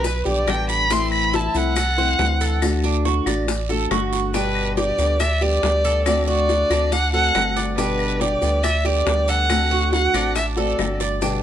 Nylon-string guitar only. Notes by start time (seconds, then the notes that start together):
0.05 muted nylon-string guitar stroke
0.25 D3 G3 B3 G4
0.47 D3 G3 B3 G4
0.90 E3 A3 C4 E4
1.54 A3 C4 E4
1.76 muted nylon-string guitar stroke
1.97 A3 C4 E4
2.19 E3 A3 C4 E4
2.62 D3 A3 D4 F#4
3.26 A3 D4 F#4
3.48 muted nylon-string guitar stroke
3.69 A3 D4 F#4
3.91 D3 A3 D4 F#4
4.33 B2 D3 G3 B3 G4
4.98 D3 G3 B3 G4
5.20 muted nylon-string guitar stroke
5.41 D3 G3 B3 G4
5.62 D3 G3 B3 G4
6.06 D3 A3 C4 F#4
6.70 A3 C4 F#4
6.91 muted nylon-string guitar stroke
7.13 A3 C4 F#4
7.34 D3 A3 C4 F#4
7.77 B2 D3 G3 B3 G4
8.41 D3 G3 B3 G4
8.63 muted nylon-string guitar stroke
8.84 D3 G3 B3 G4
9.06 D3 G3 B3 G4
9.49 D3 A3 C4 F#4
10.14 A3 C4 F#4
10.36 muted nylon-string guitar stroke
10.56 A3 C4 F#4
10.78 D3 A3 C4 F#4
11.21 B2 D3 G3 B3 G4